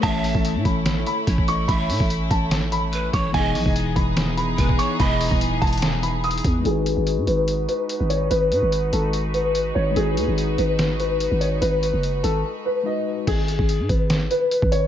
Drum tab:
CC |------------------------------------------------------------------------------------------------|------------------------------------------------------------------------------------------------|------------------------------------------------------------------------------------------------|------------------------------------------------------------------------------------------------|
HH |x-----------o-----------x-----------x-----------x-----------x-----------x-----------x-----------|x-----------o-----------x-----------x-----------x-----------x-----------x-----------x-----------|x-----------o-----------x-----------x-----------x-----------x-----------x-----------x-----------|x-----------o-----------x-----------x--x--x--x--x-----------x-----------x---x---x---x-----------|
SD |------------------------------------------------o-----------------------------------------------|------------------------------------------------o-----------------------------------------------|------------------------------------------------o-----------------------------------------------|------------------------------------------------o-----------------------------------------------|
BD |o-----------------o-----------------o-----------------------------------o-----o-----------------|o-----------------o-----------------o-----------------------------------------------o-----------|o-----------------o-----------------o-----------------------------------o-----o-----------------|o-----------------o-----------------o-----------------------------------------------o-----------|

CC |------------------------------------------------------------------------------------------------|------------------------------------------------------------------------------------------------|------------------------------------------------------------------------------------------------|------------------------------------------------------------------------------------------------|
HH |x-----------x-----------x-----------x-----------x-----------x-----------x-----------x-----------|x-----------x-----------x-----------x-----------x-----------x-----------x-----------------------|x-----------x-----------x-----------x-----------x-----------x-----------x-----------x-----------|x-----------x-----------x-----------x-----------------------------------------------------------|
SD |------------------------------------------------------------------------------------------------|------------------------------------------------------------------------------------------------|------------------------------------------------o-----------------------------------------------|------------------------------------------------------------------------------------------------|
BD |------------------------------------------------------------------------------------------------|------------------------------------------------------------------------------------------------|------------------------------------------------------------------------------------------------|------------------------------------------------------------------------------------------------|

CC |x-----------------------------------------------------------------------------------------------|
HH |x-----------x-----------x-----------x-----------x-----------x-----------x-----------x-----------|
SD |------------------------------------------------o-----------------------------------------------|
BD |o-----------------o-----------------o-----------------------------------------o-----------------|